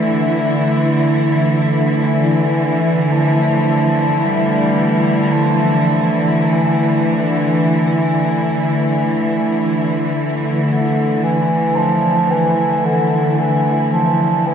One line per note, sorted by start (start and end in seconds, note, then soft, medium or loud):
0.00 14.54 D3 medium
0.00 14.54 E3 medium
0.00 14.54 A3 medium
0.00 14.54 E4 medium
1.96 2.06 F3 medium
2.04 3.15 E3 medium
3.13 4.25 F3 medium
4.24 5.33 G3 loud
5.32 6.12 F3 medium
6.40 7.14 E3 medium
7.13 7.23 F3 medium
7.21 7.32 E3 medium
7.30 7.40 D3 medium
7.38 7.47 E3 medium
7.48 10.12 E3 medium
10.69 11.24 D3 medium
11.23 11.78 E3 medium
11.76 12.33 F3 loud
12.31 12.87 E3 medium
12.85 13.41 D3 medium
13.39 13.91 E3 medium
13.92 14.49 F3 medium
14.47 14.54 E3 medium